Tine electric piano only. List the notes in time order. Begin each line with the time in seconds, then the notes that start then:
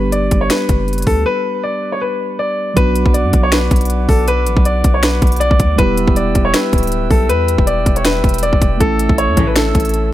Already playing: G3 B3 D4 G4
2.74 F#3 B3 D4
2.80 F#4
5.76 G3 B3 E4
5.81 G4
8.78 A3 C#4 E4
8.83 A4